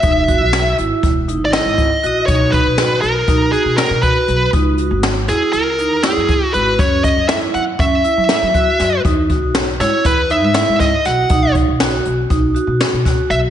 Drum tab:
HH |xxxxxxxxx|xxxxxxxxx|xxxxxxxxx|xxxxxxxxx|
SD |--o---o--|--o---o--|--oo--o--|--o---o-o|
BD |oo--o--o-|oo--o--o-|o------o-|oo--o--o-|

HH |xxxxxxxxx|xxxxxxxxx|
SD |--ooo-ooo|--o---oo-|
BD |oo--o--o-|oo--o--o-|